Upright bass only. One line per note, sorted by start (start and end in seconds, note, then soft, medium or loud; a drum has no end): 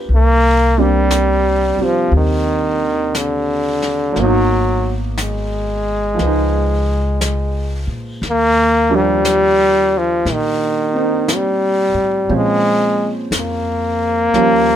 0.09 1.74 C2 medium
1.77 muted upright bass stroke soft
2.12 4.12 D#2 medium
4.16 6.15 G#1 medium
6.19 7.84 C#2 medium
7.87 8.20 A#2 medium
8.22 10.21 D#2 medium
10.25 11.91 A#2 medium
11.94 12.27 A2 medium
12.30 13.27 A#2 medium
13.31 14.29 F2 medium
14.34 14.76 D#2 medium